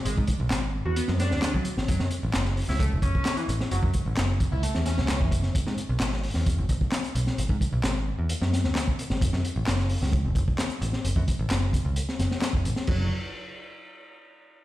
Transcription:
<<
  \new Staff \with { instrumentName = "Analog synth lead" } { \time 4/4 \key fis \minor \tempo 4 = 131 gis16 r4. fis'16 b16 r16 d'8 d'16 fis16 r8 | fis16 r4. e'16 a16 r16 cis'8 cis'16 e16 r8 | fis16 r4. e'16 a16 r16 cis'8 cis'16 e16 r8 | r1 |
r1 | r1 | r1 | fis8 r2. r8 | }
  \new Staff \with { instrumentName = "Picked electric bass" } { \clef bass \time 4/4 \key fis \minor gis,,16 gis,16 r16 b,,16 gis,,8 r16 e,16 r16 fis,8 d,8 r8 gis,,16 | fis,,16 fis,16 r16 a,,16 fis,,8 r16 cis,8 fis,,16 fis,,16 r8. a,,16 r16 | fis,,16 fis,16 r16 a,,16 fis,,8 r16 cis,16 r16 e,8 cis,8 fis,,8 r16 | gis,,16 gis,16 r16 b,,16 gis,,8 r16 e,8 gis,,16 gis,,16 r8. b,,16 r16 |
gis,,16 gis,16 r16 b,,16 gis,,8 r16 e,16 r16 fis,8 d,8 r8 gis,,16 | fis,,16 fis,16 r16 a,,16 fis,,8 r16 cis,8 fis,,16 fis,,16 r8. a,,16 r16 | fis,,16 fis,16 r16 a,,16 fis,,8 r16 cis,16 r8 fis,,16 r8 fis,,16 a,,16 r16 | fis,,8 r2. r8 | }
  \new DrumStaff \with { instrumentName = "Drums" } \drummode { \time 4/4 hh16 bd16 <hh bd>8 <hc hh sn>4 hh16 sn16 <hh sn>16 sn16 <hc hh sn>16 bd16 hh16 sn16 | <hh bd>16 sn16 hh8 <hc hh sn>16 sn16 hho16 sn16 <hh bd>8 <hh bd>16 bd16 <hc hh sn>16 hh16 hh16 sn16 | hh16 bd16 <hh bd>8 <hc hh sn>8 <hh bd>8 hh16 sn16 <hh sn>16 sn16 <hc hh sn>16 bd16 <hh bd>16 sn16 | <hh bd>16 sn16 hh8 <hc hh sn>16 sn16 hho16 sn16 <hh bd>8 <hh bd>16 bd16 <hc hh sn>16 hh16 hh16 sn16 |
hh16 bd16 <hh bd>8 <hc hh sn>4 hh16 sn16 <hh sn>16 sn16 <hc hh sn>16 bd16 hh16 sn16 | <hh bd>16 sn16 hh8 <hc hh sn>16 sn16 hho16 sn16 <hh bd>8 <hh bd>16 bd16 <hc hh sn>16 hh16 hh16 sn16 | hh16 bd16 <hh bd>8 <hc hh sn>8 <hh bd>8 hh16 sn16 <hh sn>16 sn16 <hc hh sn>16 bd16 hh16 sn16 | <cymc bd>4 r4 r4 r4 | }
>>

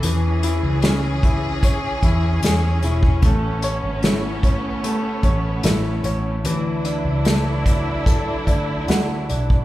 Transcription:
<<
  \new Staff \with { instrumentName = "Grand piano" } { \time 4/4 \key a \major \tempo 4 = 75 e8 e'8 cis'8 e'8 cis''8 e'8 gis'8 e'8 | a8 cis''8 e'8 cis''8 a8 cis''8 e'8 cis''8 | e8 d'8 a8 d'8 a'8 d'8 fis'8 d'8 | }
  \new Staff \with { instrumentName = "String section" } { \time 4/4 \key a \major <e cis' gis'>1 | <a b>1 | <fis d' e'>1 | }
  \new Staff \with { instrumentName = "Fingered electric bass" } { \clef bass \time 4/4 \key a \major e,8. cis,4.~ cis,16 e,8 e,8 e,,8 | a,,8. gis,,4.~ gis,,16 a,,8 a,,8 a,,8 | d,8. cis,4.~ cis,16 d,8 d,8 b,,8 | }
  \new DrumStaff \with { instrumentName = "Drums" } \drummode { \time 4/4 hh8 hh8 <hh sn>8 <hh bd>8 <hh bd>8 <hh bd>8 <hh sn>8 hh16 bd16 | <hh bd>8 hh8 <hh sn>8 <hh bd>8 hh8 <hh bd>8 <hh sn>8 hh8 | hh8 hh8 <hh sn>8 <hh bd>8 <hh bd>8 <hh bd>8 <hh sn>8 hh16 bd16 | }
>>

